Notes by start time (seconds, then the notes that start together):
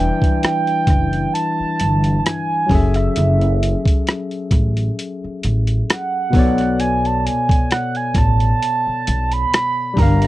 Already playing: E3 G3 D4 E4 E5 G5
0.22 muted upright bass stroke, kick, closed hi-hat
0.43 G5, cross-stick, closed hi-hat
0.67 closed hi-hat
0.87 F#1, kick, cross-stick, closed hi-hat
1.13 closed hi-hat
1.34 A5, closed hi-hat
1.60 muted upright bass stroke
1.80 G1, closed hi-hat
2.04 closed hi-hat
2.19 A5
2.24 G#5, cross-stick, closed hi-hat
2.66 F#3 C#4, kick
2.70 F#1 G#4 A4, open hi-hat
2.75 E5
2.94 E5, cross-stick, closed hi-hat
3.16 F#1, closed hi-hat
3.41 closed hi-hat
3.63 closed hi-hat
3.85 muted upright bass stroke, kick, closed hi-hat
4.07 cross-stick, closed hi-hat
4.31 closed hi-hat
4.51 A1, kick, closed hi-hat
4.77 closed hi-hat
4.99 closed hi-hat
5.24 muted upright bass stroke
5.43 A1, closed hi-hat
5.67 closed hi-hat
5.90 F#5, cross-stick, closed hi-hat
6.30 B1 B2 B3, kick
6.34 A4 C#5, open hi-hat
6.39 D5
6.58 cross-stick, closed hi-hat
6.80 G#5, closed hi-hat
7.05 A5, closed hi-hat
7.20 A5
7.26 G#5, closed hi-hat
7.49 muted upright bass stroke, kick, closed hi-hat
7.71 F#5, cross-stick, closed hi-hat
7.95 G#5, closed hi-hat
8.14 A1 A5, kick, cross-stick, closed hi-hat
8.40 closed hi-hat
8.62 closed hi-hat
8.87 muted upright bass stroke
9.07 B1, closed hi-hat
9.32 B5, closed hi-hat
9.54 cross-stick, closed hi-hat
9.94 G3 D4, kick
9.98 G1 G4 A#4 A#5, open hi-hat
10.02 F5
10.22 closed hi-hat